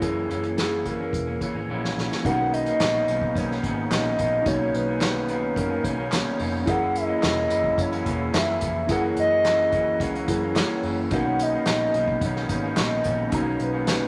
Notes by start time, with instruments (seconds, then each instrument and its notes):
0.00 picked electric bass F#1, clean electric guitar F#2 C#3 E3 A#3 C#4, tine electric piano C#4 E4 G#4 A#4, soft synth lead C#5, kick, closed hi-hat
0.29 picked electric bass F#1, clean electric guitar C#3 E3 A#3 C#4, closed hi-hat
0.43 clean electric guitar E3 A#3 C#4, closed hi-hat
0.57 clean electric guitar F#2 C#3 E3 A#3 C#4, soft synth lead G#4, snare, closed hi-hat
0.85 clean electric guitar C#3 E3 A#3 C#4, soft synth lead A#4, kick, closed hi-hat
0.99 clean electric guitar E3 A#3 C#4
1.13 picked electric bass E1, kick, closed hi-hat
1.27 clean electric guitar E3 A#3 C#4
1.41 clean electric guitar C#3 E3 A#3 C#4, soft synth lead C#5, kick, closed hi-hat
1.54 picked electric bass G#1, clean electric guitar E3 A#3 C#4
1.68 picked electric bass A#1, clean electric guitar F#2 C#3 E3 A#3 C#4
1.85 snare
1.97 picked electric bass A#1, snare
2.10 clean electric guitar E3 A#3 C#4, snare
2.22 picked electric bass B1, clean electric guitar B2 D#3, accordion C#3 B3 C#4 D#4, tine electric piano C#4 D#4 F#4, soft synth lead F#5, kick, closed hi-hat
2.27 clean electric guitar A#3 C#4, tine electric piano A#4
2.39 clean electric guitar D#3 A#3 C#4
2.53 soft synth lead D#5, closed hi-hat
2.66 clean electric guitar D#3 A#3 C#4, closed hi-hat
2.80 picked electric bass A#1, clean electric guitar B2 D#3 A#3 C#4, snare, clap, closed hi-hat
3.08 picked electric bass B1, clean electric guitar B2 D#3 A#3 C#4, closed hi-hat
3.22 kick
3.35 picked electric bass B1, clean electric guitar B2 D#3 A#3 C#4, soft synth lead C#5, kick, closed hi-hat
3.50 clean electric guitar D#3 A#3 C#4, snare
3.63 picked electric bass G#1, clean electric guitar B2 D#3 A#3 C#4, kick, closed hi-hat
3.91 picked electric bass A#1, clean electric guitar B2 D#3 A#3 C#4, soft synth lead D#5, snare, clap, closed hi-hat
4.18 picked electric bass A#1, clean electric guitar B2 D#3 A#3 C#4, kick, closed hi-hat
4.42 picked electric bass B1, clean electric guitar B2 D#3, tine electric piano C#4 D#4 F#4, kick, closed hi-hat
4.47 clean electric guitar A#3 C#4, tine electric piano C#5, soft synth lead C#5
4.59 clean electric guitar D#3 A#3 C#4
4.74 picked electric bass B1, soft synth lead B4, closed hi-hat
4.88 clean electric guitar D#3 A#3 C#4
5.01 clean electric guitar B2 D#3 A#3 C#4, snare, clap, closed hi-hat
5.28 clean electric guitar B2 D#3 A#3 C#4, closed hi-hat
5.55 picked electric bass F#1, clean electric guitar B2 D#3 A#3 C#4, soft synth lead A#4, kick, closed hi-hat
5.70 clean electric guitar D#3 A#3 C#4
5.83 picked electric bass B1, clean electric guitar B2 D#3 A#3 C#4, soft synth lead C#5, kick, closed hi-hat
5.97 clean electric guitar D#3 A#3 C#4
6.11 clean electric guitar B2 D#3 A#3 C#4, snare, clap, closed hi-hat
6.39 picked electric bass F1, clean electric guitar B2 D#3 A#3 C#4, open hi-hat
6.65 picked electric bass F#1, clean electric guitar F#2 C#3 E3 A#3 C#4, accordion F#3 E4, tine electric piano C#4 E4 G#4, kick, closed hi-hat
6.69 tine electric piano A#4, soft synth lead F#5
6.79 clean electric guitar E3 A#3 C#4
6.96 soft synth lead D#5, closed hi-hat
7.07 clean electric guitar E3 A#3 C#4
7.20 picked electric bass E1, clean electric guitar F#2 C#3 E3 A#3 C#4, snare, clap, closed hi-hat
7.48 picked electric bass F#1, clean electric guitar C#3 E3 A#3 C#4, closed hi-hat
7.64 kick
7.78 picked electric bass F#1, soft synth lead C#5, kick, closed hi-hat
7.91 clean electric guitar E3 A#3 C#4, closed hi-hat
8.04 picked electric bass E1, clean electric guitar C#3 E3 A#3 C#4, kick, closed hi-hat
8.33 picked electric bass F#1, clean electric guitar F#2 C#3 E3 A#3 C#4, soft synth lead E5, snare, clap, closed hi-hat
8.60 picked electric bass F1, clean electric guitar C#3 E3 A#3 C#4, kick, closed hi-hat
8.87 picked electric bass F#1, clean electric guitar F#2 C#3 E3 A#3 C#4, tine electric piano C#4 E4 G#4, accordion F#4, kick, closed hi-hat
8.91 tine electric piano A#4, soft synth lead F#5
9.02 clean electric guitar E3 A#3 C#4
9.17 picked electric bass F#1, soft synth lead D#5, closed hi-hat
9.30 clean electric guitar E3 A#3 C#4
9.44 clean electric guitar F#2 C#3 E3 A#3 C#4, snare, clap, closed hi-hat
9.72 clean electric guitar C#3 E3 A#3 C#4, kick, closed hi-hat
9.99 picked electric bass C#2, clean electric guitar C#3 E3 A#3 C#4, soft synth lead C#5, kick, closed hi-hat
10.15 clean electric guitar E3 A#3 C#4, closed hi-hat
10.27 picked electric bass F#2, clean electric guitar C#3 E3 A#3 C#4, tine electric piano C#4 E4 G#4 A#4, soft synth lead C#5, kick, closed hi-hat
10.41 clean electric guitar E3 A#3 C#4
10.55 clean electric guitar F#2 C#3 E3 A#3 C#4, snare, clap, closed hi-hat
10.83 picked electric bass F#1, clean electric guitar C#3 E3 A#3 C#4, open hi-hat
11.09 picked electric bass B1, clean electric guitar B2 D#3 A#3, accordion B3 D#4, tine electric piano C#4 D#4 F#4, kick, closed hi-hat
11.13 clean electric guitar C#4, tine electric piano A#4, soft synth lead F#5
11.25 clean electric guitar D#3 A#3 C#4
11.39 soft synth lead D#5, closed hi-hat
11.52 clean electric guitar D#3 A#3 C#4
11.66 picked electric bass A#1, clean electric guitar B2 D#3 A#3 C#4, snare, clap, closed hi-hat
11.93 picked electric bass B1, clean electric guitar B2 D#3 A#3 C#4, closed hi-hat
12.08 kick
12.21 picked electric bass B1, clean electric guitar B2 D#3 A#3 C#4, kick, closed hi-hat
12.26 soft synth lead C#5
12.35 clean electric guitar D#3 A#3 C#4, snare
12.49 picked electric bass G#1, clean electric guitar B2 D#3 A#3 C#4, kick, closed hi-hat
12.63 clean electric guitar D#3 A#3 C#4
12.76 picked electric bass A#1, clean electric guitar B2 D#3 A#3 C#4, snare, clap, closed hi-hat
12.81 soft synth lead D#5
13.03 picked electric bass A#1, clean electric guitar B2 D#3 A#3 C#4, kick, closed hi-hat
13.30 picked electric bass B1, clean electric guitar B2 D#3 A#3 C#4, tine electric piano C#4 D#4 F#4, kick, closed hi-hat
13.35 soft synth lead C#5, tine electric piano A#5
13.45 clean electric guitar D#3 A#3 C#4
13.60 picked electric bass B1, soft synth lead B4, closed hi-hat
13.73 clean electric guitar D#3 A#3 C#4
13.87 clean electric guitar B2 D#3 A#3 C#4, snare, clap, closed hi-hat